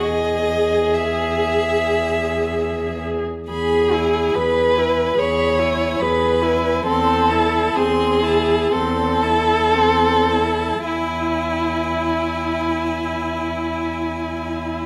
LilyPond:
<<
  \new Staff \with { instrumentName = "Violin" } { \time 4/4 \key e \major \tempo 4 = 68 dis''4 e''2~ e''8 r8 | b''8 gis''8 b''8 gis''8 b''8 gis''8 b''8 gis''8 | c'''8 a''8 c'''8 a''8 c'''8 a''8 c'''8 a''8 | gis''1 | }
  \new Staff \with { instrumentName = "Violin" } { \time 4/4 \key e \major gis'2.~ gis'8 r8 | gis'4 b'4 cis''4 b'4 | a'4 gis'4 a'2 | e'1 | }
  \new Staff \with { instrumentName = "Viola" } { \time 4/4 \key e \major gis'2.~ gis'8. r16 | gis'8 e'8 gis'8 e'8 gis'8 e'8 gis'8 e'8 | c'8 e'8 c'8 e'8 c'8 e'8 c'8 e'8 | e'1 | }
  \new Staff \with { instrumentName = "Cello" } { \clef bass \time 4/4 \key e \major e,2.~ e,8. r16 | e,4 e,4 e,4 e,4 | e,4 e,4 e,4 e,4 | e,1 | }
>>